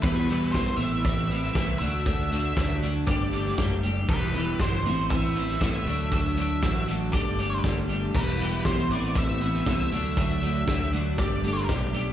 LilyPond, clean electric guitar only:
\new Staff \with { instrumentName = "Clean electric guitar" } { \time 4/4 \key g \major \tempo 4 = 118 <e, b, e g b e'>8 <e, b, e g b e'>8 <e, b, e g b e'>8 <a, e b c' e'>8 <a, e b c' e'>8 <a, e b c' e'>8 <a, e b c' e'>8 <d a d' fis'>8 | <d a d' fis'>8 <d a d' fis'>8 <d a d' fis'>8 <d a d' fis'>8 <g a d' g'>8 <g a d' g'>8 <g a d' g'>8 <g a d' g'>8 | <e, b, e g e' g'>8 <e, b, e g e' g'>8 <e, b, e g e' g'>8 <a, e b c' e'>8 <a, e b c' e'>8 <a, e b c' e'>8 <a, e b c' e'>8 <d fis a d' fis'>8 | <d fis a d' fis'>8 <d fis a d' fis'>8 <d fis a d' fis'>8 <d fis a d' fis'>8 <g a d' g'>8 <g a d' g'>8 <g a d' g'>8 <g a d' g'>8 |
<e, b, e g e' g'>8 <e, b, e g e' g'>8 <e, b, e g e' g'>8 <a, e b c' e'>8 <a, e b c' e'>8 <a, e b c' e'>8 <a, e b c' e'>8 <d fis a d' fis'>8 | <d fis a d' fis'>8 <d fis a d' fis'>8 <d fis a d' fis'>8 <d fis a d' fis'>8 <g a d' g'>8 <g a d' g'>8 <g a d' g'>8 <g a d' g'>8 | }